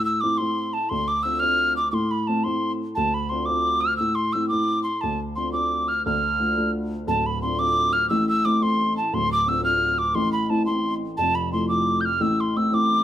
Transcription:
Already playing: upright piano A2
0.05 tin whistle E6
0.21 upright piano A3 C4 E4, tin whistle D6
0.38 upright piano A3 C4 E4, tin whistle C6
0.73 tin whistle A5
0.89 upright piano D2, tin whistle C6
1.08 tin whistle D6
1.23 upright piano C4 D4 F4, tin whistle E6
1.40 upright piano C4 D4 F4, tin whistle F6
1.77 tin whistle D6
1.91 upright piano A2, tin whistle C6 D6
2.11 tin whistle B5
2.27 upright piano A3 C4 E4, tin whistle A5
2.44 upright piano A3 C4 E4, tin whistle C6
2.95 upright piano D2, tin whistle A5
3.14 tin whistle B5
3.29 upright piano C4 D4 F4, tin whistle C6
3.46 upright piano C4 D4 F4, tin whistle D6
3.81 tin whistle F6
3.97 upright piano A2, tin whistle E6
4.15 tin whistle C6
4.33 upright piano A3 C4 E4, tin whistle E6
4.49 upright piano A3 C4 E4, tin whistle D6
4.83 tin whistle C6
5.01 upright piano D2, tin whistle A5
5.36 upright piano C4 D4 F4, tin whistle C6
5.53 upright piano C4 D4 F4, tin whistle D6
5.88 tin whistle F6
6.06 upright piano D2, tin whistle F6
6.40 upright piano A3 D4 F4
6.57 upright piano A3 D4 F4
7.07 upright piano D1 D2, tin whistle A5
7.26 tin whistle B5
7.42 upright piano C4 D4 F4, tin whistle C6
7.59 upright piano C4 D4 F4, tin whistle D6
7.93 tin whistle F6
8.09 upright piano A1 A2, tin whistle E6
8.29 tin whistle E6
8.45 upright piano A3 C4 E4, tin whistle D6
8.61 upright piano A3 C4 E4, tin whistle C6
8.97 tin whistle A5
9.13 upright piano D1 D2, tin whistle C6
9.32 tin whistle D6
9.47 upright piano C4 D4 F4, tin whistle E6
9.63 upright piano C4 D4 F4, tin whistle F6
9.98 tin whistle D6
10.15 upright piano A1 A2, tin whistle C6
10.33 tin whistle B5
10.46 upright piano A3, tin whistle A5 B5
10.50 upright piano C4 E4
10.66 upright piano A3 C4, tin whistle C6
11.17 upright piano F1 F2, tin whistle A5
11.35 tin whistle B5
11.53 upright piano F3 A3 E4, tin whistle C6
11.69 upright piano F3 A3 E4, tin whistle D6
12.01 tin whistle G6
12.05 tin whistle F6
12.20 upright piano A1 A2, tin whistle E6
12.40 tin whistle C6
12.56 upright piano A3 C4 E4, tin whistle E6
12.72 upright piano A3 C4 E4, tin whistle D6

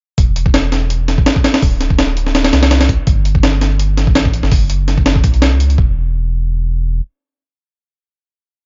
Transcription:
0.18 sub bass E1, kick, closed hi-hat
0.36 closed hi-hat
0.46 kick
0.54 snare, closed hi-hat
0.72 snare, closed hi-hat
0.90 closed hi-hat
1.08 snare, closed hi-hat
1.18 kick
1.26 snare, closed hi-hat
1.36 kick
1.44 snare, closed hi-hat
1.54 snare, closed hi-hat
1.62 sub bass D1, kick, open hi-hat
1.81 snare, closed hi-hat
1.90 kick
1.99 snare, closed hi-hat
2.17 closed hi-hat
2.27 snare
2.35 snare, closed hi-hat
2.44 snare, closed hi-hat
2.53 sub bass C2, snare, closed hi-hat
2.63 snare, closed hi-hat
2.71 snare, closed hi-hat
2.81 snare, closed hi-hat
2.89 kick, closed hi-hat
3.07 sub bass G1, kick, closed hi-hat
3.25 closed hi-hat
3.35 kick
3.43 snare, closed hi-hat
3.61 snare, closed hi-hat
3.79 closed hi-hat
3.97 snare, closed hi-hat
4.07 kick
4.15 sub bass A1, snare, closed hi-hat
4.25 kick
4.34 closed hi-hat
4.43 sub bass G1, snare
4.51 sub bass F#1, kick, open hi-hat
4.70 closed hi-hat
4.88 snare, closed hi-hat
4.98 kick
5.06 snare, closed hi-hat
5.16 kick
5.24 sub bass B1, kick, closed hi-hat
5.34 closed hi-hat
5.42 snare, closed hi-hat
5.52 sub bass C#2
5.60 closed hi-hat
5.70 closed hi-hat
5.78 sub bass E1, kick

